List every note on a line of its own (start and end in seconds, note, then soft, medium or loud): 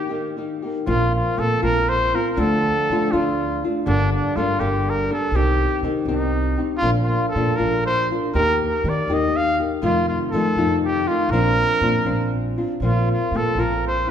0.00 0.40 G4 medium
0.09 0.35 D#3 soft
0.09 0.37 A#3 medium
0.09 0.37 D#4 soft
0.09 0.37 G4 medium
0.37 0.62 D#3 soft
0.37 0.62 A#3 soft
0.37 0.63 D#4 soft
0.37 0.61 G4 soft
0.62 0.86 A#3 soft
0.62 0.87 D#4 soft
0.62 0.87 G4 soft
0.86 1.21 A#1 medium
0.86 1.38 A#2 medium
0.86 1.36 F3 medium
0.86 1.36 A#3 medium
0.86 1.36 C4 medium
0.86 1.38 F4 medium
0.86 1.13 F4 medium
1.15 1.41 F4 medium
1.37 1.54 A#2 medium
1.37 1.62 F3 medium
1.37 1.62 A#3 medium
1.37 1.62 C4 medium
1.37 1.61 F4 medium
1.37 1.63 A4 medium
1.62 2.12 A#1 medium
1.62 2.14 A#2 soft
1.62 2.14 F3 soft
1.62 2.14 A#3 soft
1.62 2.14 C4 medium
1.62 2.13 F4 medium
1.62 1.90 A#4 medium
1.89 2.17 C5 medium
2.14 2.37 A#3 soft
2.14 2.37 C4 soft
2.14 2.36 F4 medium
2.14 2.31 A#4 medium
2.31 2.41 A#4 medium
2.36 2.71 D2 medium
2.36 3.14 D3 medium
2.36 2.89 F3 medium
2.36 2.91 A3 medium
2.36 2.91 D4 medium
2.36 2.89 F4 medium
2.36 3.13 A4 loud
2.89 3.05 D3 medium
2.89 3.13 F3 medium
2.89 3.12 A3 medium
2.89 3.12 D4 medium
2.89 3.12 F4 medium
3.12 3.61 D2 medium
3.12 3.64 D3 medium
3.12 3.64 F3 medium
3.12 3.64 A3 medium
3.12 3.63 D4 medium
3.12 3.69 F4 medium
3.12 3.63 F4 medium
3.64 3.86 A3 soft
3.64 3.86 D4 soft
3.64 3.87 F4 medium
3.86 4.19 G1 medium
3.86 4.36 G2 medium
3.86 4.36 D3 medium
3.86 4.36 G3 medium
3.86 4.36 A#3 medium
3.86 4.11 D4 medium
3.86 4.37 D4 medium
3.86 4.36 A4 medium
4.12 4.38 D4 medium
4.36 4.52 G2 medium
4.36 4.60 G3 medium
4.36 4.59 A#3 medium
4.36 4.59 D4 medium
4.36 4.62 F4 medium
4.36 4.59 A4 medium
4.59 5.07 G1 medium
4.59 5.10 G2 medium
4.59 5.10 D3 medium
4.59 5.10 G3 medium
4.59 5.10 A#3 medium
4.59 5.10 D4 soft
4.59 4.91 G4 medium
4.59 5.10 A4 medium
4.90 5.11 A#4 medium
5.11 5.34 G3 soft
5.11 5.34 A#3 soft
5.11 5.34 D4 soft
5.11 5.33 A4 soft
5.11 5.37 A4 medium
5.31 5.64 C2 medium
5.31 5.83 C3 medium
5.31 5.83 D#3 medium
5.31 5.82 C4 medium
5.31 5.83 D#4 medium
5.36 5.84 G4 medium
5.36 5.82 G4 medium
5.82 5.98 C3 medium
5.82 6.07 D#3 soft
5.82 6.07 C4 medium
5.82 6.07 D#4 medium
5.82 6.07 G4 medium
6.05 6.55 C2 medium
6.05 6.59 C3 medium
6.05 6.58 D#3 soft
6.05 6.58 C4 medium
6.05 6.60 D#4 medium
6.05 6.58 D#4 soft
6.05 6.56 G4 medium
6.57 6.82 C4 soft
6.57 6.82 D#4 soft
6.57 6.82 G4 soft
6.77 6.90 F4 medium
6.82 7.16 A#1 medium
6.82 7.34 A#2 medium
6.82 7.35 F3 medium
6.82 7.36 A#3 medium
6.82 7.34 D4 medium
6.82 7.35 F4 medium
7.04 7.28 F4 medium
7.29 7.58 A4 medium
7.35 7.51 A#2 medium
7.35 7.58 F3 medium
7.35 7.58 A#3 medium
7.35 7.58 D4 medium
7.35 7.57 F4 medium
7.56 8.08 A#1 medium
7.56 8.11 F3 soft
7.56 8.11 A#3 medium
7.56 8.11 D4 medium
7.56 8.10 F4 medium
7.56 7.85 A#4 medium
7.60 8.11 A#2 soft
7.86 8.08 C5 medium
8.11 8.33 A#3 soft
8.11 8.34 D4 soft
8.11 8.35 F4 soft
8.34 8.67 D#2 medium
8.34 8.84 D#3 medium
8.34 8.84 A#3 medium
8.34 8.84 D#4 medium
8.34 8.84 G4 medium
8.34 8.60 A#4 medium
8.67 8.91 A#4 medium
8.84 9.00 D#3 medium
8.84 9.08 D#3 soft
8.84 9.09 A#3 medium
8.84 9.08 D#4 medium
8.84 9.09 G4 medium
8.89 9.15 D5 medium
9.08 9.56 D#2 medium
9.08 9.60 D#3 soft
9.08 9.60 A#3 medium
9.08 9.60 D#4 medium
9.08 9.58 G4 medium
9.14 9.38 D#5 medium
9.37 9.59 F5 medium
9.60 9.82 A#3 soft
9.60 9.82 D#4 soft
9.60 9.83 G4 soft
9.82 10.32 F2 medium
9.82 10.15 F2 medium
9.82 10.32 C3 medium
9.82 10.32 D#3 medium
9.82 10.33 A3 medium
9.82 10.33 D#4 medium
9.82 10.34 F4 medium
9.82 10.08 F4 medium
10.09 10.19 F4 medium
10.31 10.56 D#3 medium
10.31 10.48 F3 medium
10.31 10.57 A3 medium
10.31 10.57 D#4 medium
10.31 10.56 F4 medium
10.31 10.78 A4 medium
10.55 11.04 F2 medium
10.55 11.07 F2 medium
10.55 11.07 C3 medium
10.55 11.07 D#3 soft
10.55 11.07 A3 medium
10.55 11.07 D#4 medium
10.55 11.08 F4 medium
10.85 11.09 G4 medium
11.08 11.31 D#3 soft
11.08 11.31 A3 soft
11.08 11.31 D#4 medium
11.08 11.33 F4 medium
11.08 11.31 F4 soft
11.29 11.62 A#1 medium
11.29 11.82 A#2 medium
11.29 11.82 C4 medium
11.29 12.33 A#4 loud
11.33 11.82 F3 medium
11.33 11.82 D4 medium
11.33 11.83 F4 medium
11.81 11.97 A#2 medium
11.81 12.05 F3 medium
11.81 12.05 C4 medium
11.81 12.05 D4 medium
11.81 12.04 F4 medium
12.04 12.54 A#1 medium
12.04 12.58 A#2 soft
12.04 12.82 F3 medium
12.04 12.57 C4 medium
12.04 12.57 D4 medium
12.04 12.57 F4 medium
12.58 12.82 C4 soft
12.58 12.82 D4 soft
12.58 12.82 F4 soft
12.80 13.14 A#1 medium
12.80 13.33 A#2 medium
12.80 13.34 F3 medium
12.80 13.33 A#3 medium
12.80 13.34 C4 medium
12.80 13.35 F4 medium
12.84 13.08 F4 medium
13.11 13.38 F4 medium
13.31 13.48 A#2 medium
13.31 13.58 F3 soft
13.31 13.57 A#3 medium
13.31 13.57 C4 medium
13.31 13.57 F4 medium
13.36 13.62 A4 medium
13.55 14.04 A#1 medium
13.55 14.08 A#3 soft
13.55 14.07 C4 medium
13.55 14.06 F4 medium
13.59 14.09 A#2 medium
13.59 14.09 F3 soft
13.59 13.86 A#4 medium
13.88 14.11 C5 medium
14.07 14.11 F4 soft